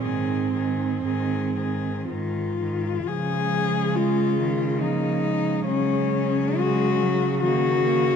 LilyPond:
<<
  \new Staff \with { instrumentName = "Cello" } { \time 3/4 \key des \major \tempo 4 = 67 aes'8 aes'8 aes'8 aes'8 f'4 | aes'4 f'4 ees'4 | des'4 ges'4 ges'4 | }
  \new Staff \with { instrumentName = "Cello" } { \time 3/4 \key des \major c'2 r4 | aes2 bes8 aes8~ | aes4 ges4 bes8 bes8 | }
  \new Staff \with { instrumentName = "Cello" } { \clef bass \time 3/4 \key des \major ees8 ees8 ees8 ees8 ees8 ees8 | f4 aes8 ees8 f4 | ges4 aes8 ges8 ees4 | }
  \new Staff \with { instrumentName = "Cello" } { \clef bass \time 3/4 \key des \major aes,4 aes,4 aes,4 | des2. | des2. | }
>>